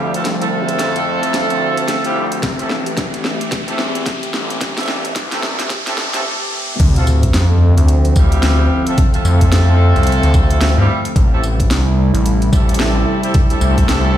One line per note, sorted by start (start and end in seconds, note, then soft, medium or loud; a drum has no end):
0.00 0.23 D2 loud
0.00 2.39 D3 medium
0.00 2.39 F3 medium
0.00 0.10 G3 medium
0.00 6.76 A3 medium
0.00 0.10 C4 medium
0.00 6.75 C4 medium
0.00 0.10 E4 medium
0.00 0.10 F4 medium
0.00 0.10 G4 medium
0.00 riser medium
0.14 0.25 A3 medium
0.14 0.25 C4 medium
0.14 0.25 E4 medium
0.14 0.25 F4 medium
0.14 0.25 A4 medium
0.14 closed hi-hat medium
0.25 0.78 C2 medium
0.25 snare medium
0.25 closed hi-hat medium
0.41 2.01 A3 loud
0.41 2.01 C4 loud
0.41 2.01 E4 medium
0.41 2.01 F4 medium
0.41 2.01 A4 loud
0.41 closed hi-hat soft
0.69 closed hi-hat medium
0.79 1.21 F2 medium
0.79 snare medium
0.79 closed hi-hat medium
0.96 closed hi-hat soft
1.23 1.48 F2 medium
1.23 closed hi-hat medium
1.34 snare medium
1.34 closed hi-hat medium
1.50 1.87 D2 medium
1.50 closed hi-hat soft
1.77 closed hi-hat medium
1.88 snare medium
1.88 closed hi-hat medium
2.04 2.25 G3 loud
2.04 2.25 C4 medium
2.04 2.25 E4 medium
2.04 2.25 F4 medium
2.04 2.25 G4 loud
2.04 closed hi-hat soft
2.15 2.41 D2 medium
2.32 closed hi-hat medium
2.43 2.57 A1 loud
2.43 6.75 E3 medium
2.43 6.75 G4 medium
2.43 kick loud
2.43 snare medium
2.43 closed hi-hat medium
2.59 3.38 A1 loud
2.59 2.70 A3 medium
2.59 2.70 C4 medium
2.59 2.70 E4 medium
2.59 2.70 G4 medium
2.59 2.70 A4 medium
2.59 closed hi-hat soft
2.70 snare medium
2.86 closed hi-hat medium
2.97 kick medium
2.97 snare medium
2.97 closed hi-hat medium
3.14 closed hi-hat soft
3.25 snare medium
3.41 closed hi-hat medium
3.52 kick loud
3.52 snare medium
3.52 closed hi-hat medium
3.68 4.05 E2 loud
3.68 3.79 A3 medium
3.68 3.79 C4 medium
3.68 3.79 E4 medium
3.68 3.79 G4 medium
3.68 3.79 A4 medium
3.68 closed hi-hat soft
3.79 snare medium
3.95 closed hi-hat medium
4.06 kick loud
4.06 snare medium
4.06 closed hi-hat medium
4.23 closed hi-hat soft
4.34 4.59 A1 loud
4.34 snare medium
4.50 closed hi-hat medium
4.61 5.14 G1 loud
4.61 kick loud
4.61 snare medium
4.61 closed hi-hat medium
4.78 4.88 A3 medium
4.78 4.88 C4 medium
4.78 4.88 E4 medium
4.78 4.88 G4 medium
4.78 4.88 A4 loud
4.78 snare medium
4.78 closed hi-hat soft
4.81 closed hi-hat soft
4.83 closed hi-hat soft
4.86 snare medium
4.86 closed hi-hat soft
5.05 closed hi-hat medium
5.16 5.57 C2 loud
5.16 kick loud
5.16 snare medium
5.16 closed hi-hat medium
5.32 5.43 A3 medium
5.32 5.43 C4 medium
5.32 5.43 E4 medium
5.32 5.43 G4 medium
5.32 5.43 A4 loud
5.32 snare medium
5.32 closed hi-hat soft
5.43 snare loud
5.59 5.69 A1 loud
5.59 snare medium
5.59 closed hi-hat medium
5.70 kick medium
5.70 snare loud
5.70 closed hi-hat medium
5.87 5.96 A3 medium
5.87 5.96 C4 medium
5.87 5.96 E4 medium
5.87 5.96 G4 medium
5.87 5.96 A4 loud
5.87 snare medium
5.87 closed hi-hat soft
5.98 6.23 A1 loud
5.98 snare loud
6.14 6.23 A3 medium
6.14 6.23 C4 medium
6.14 6.23 E4 medium
6.14 6.24 G4 medium
6.14 6.23 A4 loud
6.14 snare medium
6.14 closed hi-hat medium
6.80 7.33 D2 loud
6.80 11.12 D3 medium
6.80 11.12 F3 medium
6.80 14.18 A3 medium
6.80 11.12 C4 medium
6.80 kick loud
6.80 closed hi-hat medium
6.80 crash loud
6.80 sub drop medium
6.96 7.07 A3 medium
6.96 7.07 C4 medium
6.96 7.07 E4 medium
6.96 7.07 F4 medium
6.96 7.07 A4 medium
6.96 closed hi-hat soft
7.07 tambourine medium
7.23 kick medium
7.23 closed hi-hat medium
7.34 7.75 F2 loud
7.34 snare loud
7.34 closed hi-hat medium
7.77 8.14 D2 medium
7.77 closed hi-hat medium
7.88 closed hi-hat medium
8.05 closed hi-hat soft
8.16 8.69 D2 loud
8.16 8.83 G3 medium
8.16 8.83 C4 medium
8.16 8.83 E4 medium
8.16 8.83 F4 medium
8.16 8.83 G4 medium
8.16 kick loud
8.16 tambourine medium
8.32 closed hi-hat medium
8.43 snare loud
8.43 closed hi-hat medium
8.59 cross-stick medium
8.87 8.98 A3 medium
8.87 8.97 C4 medium
8.87 8.97 E4 medium
8.87 8.97 F4 medium
8.87 8.98 A4 medium
8.87 closed hi-hat medium
8.98 kick loud
8.98 closed hi-hat medium
9.14 10.74 A3 loud
9.14 10.74 C4 loud
9.14 10.74 E4 loud
9.14 10.74 F4 loud
9.14 10.74 A4 loud
9.14 closed hi-hat soft
9.25 9.50 F2 loud
9.25 tambourine medium
9.41 kick medium
9.41 closed hi-hat medium
9.52 9.93 F2 loud
9.52 snare loud
9.52 closed hi-hat medium
9.96 10.21 C2 loud
9.96 closed hi-hat soft
10.03 closed hi-hat soft
10.07 closed hi-hat medium
10.12 closed hi-hat soft
10.23 10.75 D2 loud
10.23 closed hi-hat soft
10.34 kick loud
10.34 tambourine medium
10.50 closed hi-hat medium
10.61 snare loud
10.61 closed hi-hat medium
10.78 10.87 G2 loud
10.78 10.98 G3 loud
10.78 10.98 C4 loud
10.78 10.98 E4 medium
10.78 10.98 F4 medium
10.78 10.98 G4 loud
11.05 closed hi-hat medium
11.16 11.69 A1 medium
11.16 14.18 C3 medium
11.16 14.18 G3 medium
11.16 13.32 E4 medium
11.16 kick loud
11.16 closed hi-hat medium
11.32 11.43 A3 medium
11.32 11.43 C4 medium
11.32 11.43 E4 medium
11.32 11.43 G4 medium
11.32 11.43 A4 loud
11.44 tambourine medium
11.60 kick medium
11.60 closed hi-hat medium
11.70 12.11 C2 medium
11.70 snare loud
11.70 closed hi-hat medium
12.14 12.50 A1 loud
12.14 closed hi-hat medium
12.26 closed hi-hat medium
12.42 closed hi-hat soft
12.52 13.05 A1 loud
12.52 13.19 A3 medium
12.52 13.19 C4 medium
12.52 13.19 E4 medium
12.52 13.19 G4 medium
12.52 13.19 A4 medium
12.52 kick loud
12.52 tambourine medium
12.69 closed hi-hat medium
12.74 closed hi-hat medium
12.80 snare loud
12.96 cross-stick medium
13.23 13.34 A3 medium
13.23 13.34 C4 medium
13.23 13.34 E4 medium
13.23 13.34 G4 medium
13.23 13.34 A4 medium
13.23 closed hi-hat medium
13.34 14.18 D4 medium
13.34 kick loud
13.34 closed hi-hat medium
13.50 14.18 A3 loud
13.50 14.18 C4 loud
13.50 14.18 E4 loud
13.50 14.18 G4 loud
13.50 14.18 A4 loud
13.50 closed hi-hat soft
13.61 13.87 C2 loud
13.61 tambourine medium
13.78 kick medium
13.78 closed hi-hat medium
13.89 14.18 C2 loud
13.89 snare loud
13.89 closed hi-hat medium